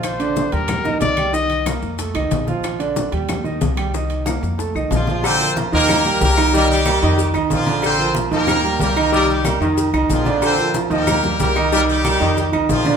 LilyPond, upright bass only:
\new Staff \with { instrumentName = "Upright bass" } { \clef bass \time 4/4 \key bes \major \tempo 4 = 185 bes,,4. ees,4. c,4~ | c,4. f,4 c,8 bes,,4~ | bes,,4. ees,4. c,4~ | c,4. f,4 c,8 bes,,4~ |
bes,,4. ees,4. c,4~ | c,4. f,4 c,8 bes,,4~ | bes,,4. ees,4. c,4~ | c,4. f,4 c,8 bes,,4~ |
bes,,4. ees,4. c,4~ | c,4. f,4 c,8 bes,,4 | }